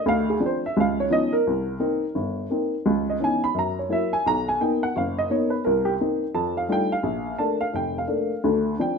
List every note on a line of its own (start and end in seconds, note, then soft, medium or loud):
0.06 0.36 D2 medium
0.06 0.29 F5 medium
0.30 0.42 G#4 medium
0.40 0.64 F3 soft
0.40 0.64 C4 soft
0.40 0.64 D4 medium
0.46 0.65 C5 medium
0.66 0.77 E5 medium
0.77 1.06 C#2 medium
0.77 0.99 F5 medium
1.00 1.12 C#5 medium
1.10 1.34 F3 soft
1.10 1.34 B3 soft
1.10 1.34 C#4 soft
1.10 1.34 D#4 medium
1.10 1.33 D#5 medium
1.33 2.11 A#4 medium
1.47 1.76 C2 medium
1.80 2.03 A#3 soft
1.80 2.03 C4 soft
1.80 2.04 D#4 medium
2.15 2.45 G1 medium
2.50 2.73 A#3 soft
2.50 2.74 C4 soft
2.50 2.74 D#4 soft
2.86 3.16 C#2 medium
3.10 3.21 D#5 medium
3.20 3.43 E3 soft
3.20 3.43 B3 soft
3.20 3.43 C#4 soft
3.20 3.43 D#4 medium
3.24 3.43 G#5 medium
3.44 3.56 B5 medium
3.54 3.85 F#2 medium
3.59 3.78 A#5 medium
3.79 3.91 C#5 medium
3.89 4.13 F#3 soft
3.89 4.13 A#3 soft
3.89 4.13 E4 medium
3.89 4.12 E5 medium
4.13 4.25 G#5 medium
4.26 4.55 B1 medium
4.26 4.47 A#5 loud
4.49 4.60 G#5 medium
4.61 4.83 A#3 soft
4.61 4.83 B3 soft
4.61 4.84 D#4 medium
4.61 4.82 G5 medium
4.83 4.95 F#5 medium
4.96 5.25 F#1 medium
4.96 5.17 F5 medium
5.18 5.30 D#5 medium
5.30 5.53 A#3 soft
5.30 5.53 B3 soft
5.30 5.53 D#4 medium
5.30 5.51 C#5 medium
5.50 5.63 B4 medium
5.65 5.95 C2 medium
5.65 5.86 A#4 medium
5.85 5.93 G4 medium
6.00 6.23 A#3 soft
6.00 6.23 C4 soft
6.00 6.23 D#4 medium
6.35 6.64 F2 medium
6.35 6.55 A5 medium
6.57 6.69 F5 medium
6.69 6.92 G3 medium
6.69 6.92 A3 soft
6.69 6.92 D4 soft
6.69 6.92 D#4 soft
6.69 6.92 F4 medium
6.69 6.92 G5 medium
6.92 7.36 F5 medium
7.03 7.33 A#1 medium
7.38 7.62 A3 medium
7.38 7.62 A#3 soft
7.38 7.62 D4 medium
7.38 7.60 A5 medium
7.61 7.73 F5 medium
7.74 8.03 F1 medium
7.74 7.96 G5 medium
7.98 8.41 F5 medium
8.07 8.31 A3 medium
8.07 8.31 A#3 soft
8.07 8.31 D4 medium
8.44 8.73 D2 medium
8.44 8.74 D3 medium
8.79 8.98 F3 soft
8.79 8.98 C4 soft
8.79 8.98 D4 medium
8.79 8.98 G5 medium